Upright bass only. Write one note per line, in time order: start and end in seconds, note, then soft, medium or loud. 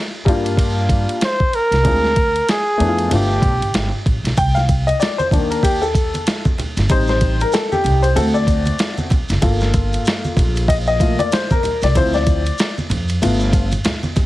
0.26 1.04 G2 medium
1.71 1.82 C2 medium
1.85 2.37 D2 medium
2.80 3.06 F2 medium
3.11 3.37 G1 loud
3.42 3.58 B1 medium
3.61 3.72 G1 medium
3.74 3.89 G1 medium
4.06 4.21 A1 medium
4.24 4.35 B1 medium
4.38 4.90 C2 medium
5.31 6.09 D#2 medium
6.77 6.88 G1 medium
7.84 8.11 C2 medium
8.16 8.69 D2 loud
9.30 9.40 F#1 medium
9.43 9.95 G1 loud
10.37 11.15 A#1 loud
11.82 11.93 C2 medium
11.96 12.48 D2 loud
12.90 13.16 F2 medium
13.22 13.74 G1 loud